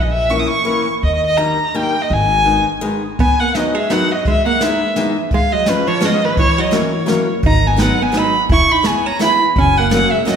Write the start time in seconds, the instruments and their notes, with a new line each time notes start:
Already playing: upright bass A#1
0.02 violin D#5
0.11 violin E5
0.30 steel-string acoustic guitar E3 A#3 C#4 E4, violin C#6
0.39 violin D#6
0.47 violin C#6
0.65 steel-string acoustic guitar E3 A#3 C#4 E4
1.03 upright bass D#2, violin D#5
1.15 violin D#5
1.26 violin D#5
1.37 steel-string acoustic guitar D#3 G3 A#3 D#4, violin A#5
1.74 steel-string acoustic guitar D#3 G3 A#3 D#4, violin G5
2.02 violin D#5
2.10 upright bass G#1, violin G#5
2.44 steel-string acoustic guitar D#3 G#3 B3 D#4
2.81 steel-string acoustic guitar D#3 G#3 B3 D#4
3.19 hollow-body jazz guitar B3, violin G#5, kick, closed hi-hat
3.40 hollow-body jazz guitar A#3, violin F#5
3.55 steel-string acoustic guitar D#3 F#3 B3 D#4, hollow-body jazz guitar F#3, violin D#5, snare, closed hi-hat
3.75 hollow-body jazz guitar G#3, violin E5
3.90 steel-string acoustic guitar D#3 F#3 B3 D#4, hollow-body jazz guitar B3, violin F#5, snare, closed hi-hat
4.11 hollow-body jazz guitar F#3, violin D#5
4.25 hollow-body jazz guitar G#3, violin E5, kick, closed hi-hat
4.46 hollow-body jazz guitar A#3, violin F#5
4.61 steel-string acoustic guitar E3 G#3 B3 D#4, hollow-body jazz guitar G#3, violin E5, snare, closed hi-hat
4.96 steel-string acoustic guitar E3 G#3 B3 D#4, snare, closed hi-hat
5.31 hollow-body jazz guitar G#3, kick, closed hi-hat
5.35 violin F5
5.52 hollow-body jazz guitar F#3, violin D#5
5.66 steel-string acoustic guitar F3 G#3 B3 C#4, hollow-body jazz guitar F3, violin B4, snare, closed hi-hat
5.87 hollow-body jazz guitar F3, violin C#5
6.00 steel-string acoustic guitar F3 G#3 B3 C#4, snare, closed hi-hat
6.05 hollow-body jazz guitar G#3, violin D#5
6.24 hollow-body jazz guitar D#3, violin B4
6.37 hollow-body jazz guitar E3, violin C#5, kick, closed hi-hat
6.58 hollow-body jazz guitar F#3, violin D#5
6.71 steel-string acoustic guitar E3 F#3 A#3 C#4, snare, closed hi-hat
6.76 hollow-body jazz guitar E3, violin C#5
7.06 steel-string acoustic guitar E3 F#3 A#3 C#4, snare, closed hi-hat
7.43 upright bass G#1, hollow-body jazz guitar D#4, kick, closed hi-hat
7.47 violin A#5
7.66 hollow-body jazz guitar B3, violin G#5
7.76 steel-string acoustic guitar F#3 G#3 B3 D#4, snare, closed hi-hat
7.81 hollow-body jazz guitar B3, violin F#5
8.02 hollow-body jazz guitar B3, violin G#5
8.12 steel-string acoustic guitar F#3 G#3 B3 D#4, snare, closed hi-hat
8.17 hollow-body jazz guitar D#4, violin B5
8.49 upright bass E1, hollow-body jazz guitar E4, violin C#6, kick, closed hi-hat
8.72 hollow-body jazz guitar D#4, violin B5
8.83 steel-string acoustic guitar E3 G#3 B3 E4, snare, closed hi-hat
8.87 hollow-body jazz guitar B3, violin G#5
9.06 hollow-body jazz guitar C#4, violin A#5
9.19 steel-string acoustic guitar E3 G#3 B3 E4, hollow-body jazz guitar E4, violin B5, snare, closed hi-hat
9.56 upright bass F#1, hollow-body jazz guitar C#4, violin G#5, kick, closed hi-hat
9.78 hollow-body jazz guitar A#3, violin F#5
9.90 steel-string acoustic guitar F#3 A#3 C#4 F#4, violin F#5, snare, closed hi-hat
9.94 hollow-body jazz guitar A#3
10.11 hollow-body jazz guitar G#3, violin E5
10.25 steel-string acoustic guitar F#3 A#3 C#4 F#4, hollow-body jazz guitar F#3, violin D#5, snare, closed hi-hat